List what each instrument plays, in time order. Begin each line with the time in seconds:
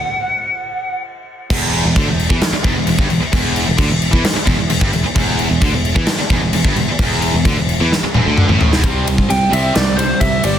Already playing: lead electric guitar F#5
1.50 picked electric bass E1, distorted electric guitar E2, kick, crash
1.73 crash
1.85 picked electric bass E1, distorted electric guitar E2
1.96 picked electric bass D2, distorted electric guitar D3, kick, crash
2.08 picked electric bass E1, distorted electric guitar E2
2.19 crash
2.30 picked electric bass E2, distorted electric guitar E3, kick
2.41 muted picked electric bass stroke, muted distorted electric guitar stroke, snare, crash
2.52 muted picked electric bass stroke, muted distorted electric guitar stroke
2.64 picked electric bass E1, distorted electric guitar E2, kick, crash
2.75 picked electric bass E1, distorted electric guitar E2
2.87 picked electric bass E1, distorted electric guitar E2, crash
2.98 picked electric bass G1, distorted electric guitar G2, kick
3.09 picked electric bass E1, distorted electric guitar E2, crash
3.20 muted distorted electric guitar stroke, muted picked electric bass stroke
3.33 picked electric bass E1, distorted electric guitar E2, kick, crash
3.56 crash
3.66 picked electric bass E1, distorted electric guitar E2
3.77 picked electric bass D2, distorted electric guitar D3, kick, crash
3.89 picked electric bass E1, distorted electric guitar E2
4.02 crash
4.12 picked electric bass E2, distorted electric guitar E3, kick
4.24 muted distorted electric guitar stroke, muted picked electric bass stroke, snare, crash
4.34 muted distorted electric guitar stroke, muted picked electric bass stroke
4.46 picked electric bass E1, distorted electric guitar E2, kick, crash
4.59 picked electric bass E1, distorted electric guitar E2
4.70 picked electric bass E1, distorted electric guitar E2, crash
4.81 picked electric bass G1, distorted electric guitar G2, kick
4.93 picked electric bass E1, distorted electric guitar E2, crash
5.05 muted picked electric bass stroke, muted distorted electric guitar stroke
5.15 picked electric bass E1, distorted electric guitar E2, kick, crash
5.39 crash
5.50 picked electric bass E1, distorted electric guitar E2
5.62 picked electric bass D2, distorted electric guitar D3, kick, crash
5.73 picked electric bass E1, distorted electric guitar E2
5.85 crash
5.96 picked electric bass E2, distorted electric guitar E3, kick
6.07 muted picked electric bass stroke, muted distorted electric guitar stroke, snare, crash
6.19 muted picked electric bass stroke, muted distorted electric guitar stroke
6.30 picked electric bass E1, distorted electric guitar E2, kick, crash
6.42 picked electric bass E1, distorted electric guitar E2
6.52 picked electric bass E1, distorted electric guitar E2, crash
6.65 picked electric bass G1, distorted electric guitar G2, kick
6.76 picked electric bass E1, distorted electric guitar E2, crash
6.88 muted picked electric bass stroke, muted distorted electric guitar stroke
6.99 picked electric bass E1, distorted electric guitar E2, kick, crash
7.22 crash
7.34 picked electric bass E1, distorted electric guitar E2
7.45 picked electric bass D2, distorted electric guitar D3, kick, crash
7.57 picked electric bass E1, distorted electric guitar E2
7.69 crash
7.80 picked electric bass E2, distorted electric guitar E3
7.92 muted picked electric bass stroke, muted distorted electric guitar stroke, snare
8.03 muted picked electric bass stroke, muted distorted electric guitar stroke
8.14 picked electric bass E1, distorted electric guitar E2, mid tom
8.25 picked electric bass D2, distorted electric guitar D3
8.38 mid tom
8.48 picked electric bass A1, distorted electric guitar A2, mid tom
8.61 floor tom
8.71 picked electric bass E1, distorted electric guitar E2, snare
8.83 picked electric bass C2, distorted electric guitar C3 G3 C4, kick, ride
9.07 distorted electric guitar C3 G3, ride
9.18 kick
9.29 picked electric bass C2, distorted electric guitar C3 G3, lead electric guitar G5, ride
9.50 picked electric bass C2, distorted electric guitar C3 G3 C4, lead electric guitar E5, ride
9.75 picked electric bass C2, distorted electric guitar C3 G3, lead electric guitar D5, snare, ride
9.96 distorted electric guitar C3 G3, lead electric guitar C5, ride
10.20 picked electric bass C2, distorted electric guitar C3 G3, lead electric guitar E5, kick, ride
10.44 picked electric bass G1, distorted electric guitar C3 G3, lead electric guitar D5, ride